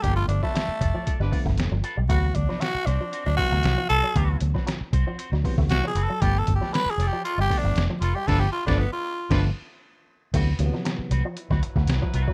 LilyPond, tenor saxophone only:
\new Staff \with { instrumentName = "Tenor saxophone" } { \time 4/4 \key g \major \tempo 4 = 116 g'16 f'16 d'16 a4. r4. r16 | fis'8 d'8 fis'8 d'8. d'16 fis'4 a'8~ | a'8 r2 r8 \tuplet 3/2 { fis'8 gis'8 a'8 } | \tuplet 3/2 { g'8 a'8 g'8 b'8 gis'8 g'8 f'8 g'8 d'8~ } d'16 r16 f'16 g'16 |
a'16 g'16 f'16 d'16 b16 f'4 r4. r16 | r1 | }